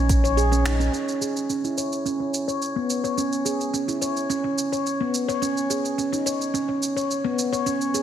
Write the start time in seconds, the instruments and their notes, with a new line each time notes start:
Already playing: analog synth bass A#1
0.09 handpan C#4, kick, closed hi-hat, shaker
0.24 handpan C#5, shaker
0.37 handpan G#4, shaker
0.52 handpan C#4, shaker
0.66 finger snap, closed hi-hat, shaker
0.80 handpan C#4, shaker
0.93 handpan C#4, shaker
1.08 shaker
1.21 handpan G#4, shaker
1.36 shaker
1.50 handpan C#4, shaker
1.64 handpan E4, shaker
1.78 handpan C#5, shaker
1.92 shaker
2.05 handpan C#4, shaker
2.20 handpan C#4
2.34 shaker
2.48 handpan C#5, shaker
2.62 shaker
2.76 handpan B3
2.90 shaker
3.04 handpan C#5, shaker
3.17 handpan C#4, shaker
3.33 shaker
3.45 handpan G#4, shaker
3.61 shaker
3.74 handpan C#4, shaker
3.88 handpan E4, shaker
4.02 handpan C#5, shaker
4.17 shaker
4.30 handpan C#4, shaker
4.44 handpan C#4
4.58 shaker
4.72 handpan C#5, shaker
4.86 shaker
5.01 handpan B3
5.14 shaker
5.29 handpan C#5, shaker
5.42 handpan C#4, shaker
5.57 shaker
5.70 handpan G#4, shaker
5.85 shaker
5.98 handpan C#4, shaker
6.13 handpan D#4, shaker
6.26 handpan C#5, shaker
6.41 shaker
6.54 handpan C#4, shaker
6.69 handpan C#4
6.83 shaker
6.97 handpan C#5, shaker
7.11 shaker
7.24 handpan B3
7.39 shaker
7.53 handpan C#5, shaker
7.66 handpan C#4, shaker
7.81 shaker
7.94 handpan G#4, shaker